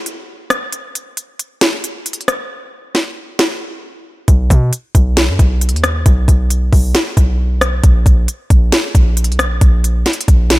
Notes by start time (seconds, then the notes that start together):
0.06 closed hi-hat
0.50 cross-stick, closed hi-hat
0.72 closed hi-hat
0.95 closed hi-hat
1.17 closed hi-hat
1.39 closed hi-hat
1.61 snare, closed hi-hat
1.84 closed hi-hat
2.06 closed hi-hat
2.13 closed hi-hat
2.21 closed hi-hat
2.28 cross-stick, closed hi-hat
2.95 snare
3.39 snare
4.28 B1, kick, closed hi-hat
4.50 B2, kick, closed hi-hat
4.73 closed hi-hat
4.95 B1, kick, closed hi-hat
5.17 snare, closed hi-hat
5.29 F#2
5.39 B1, kick, closed hi-hat
5.61 closed hi-hat
5.69 closed hi-hat
5.73 D#2, closed hi-hat
5.84 cross-stick, closed hi-hat
6.06 B1, kick, closed hi-hat
6.28 B1, kick, closed hi-hat
6.50 closed hi-hat
6.73 B1, kick, open hi-hat
6.95 snare, closed hi-hat
7.17 B1, kick, closed hi-hat
7.61 cross-stick, closed hi-hat
7.84 A#1, kick, closed hi-hat
8.06 A#1, kick, closed hi-hat
8.28 closed hi-hat
8.50 A#1, kick, closed hi-hat
8.72 snare, closed hi-hat
8.95 A#1, kick, closed hi-hat
9.17 closed hi-hat
9.24 closed hi-hat
9.29 B1, closed hi-hat
9.39 cross-stick, closed hi-hat
9.45 A#1
9.61 A#1, kick, closed hi-hat
9.84 closed hi-hat
10.06 snare, closed hi-hat
10.13 closed hi-hat
10.21 closed hi-hat
10.28 A#1, kick, closed hi-hat
10.50 snare, closed hi-hat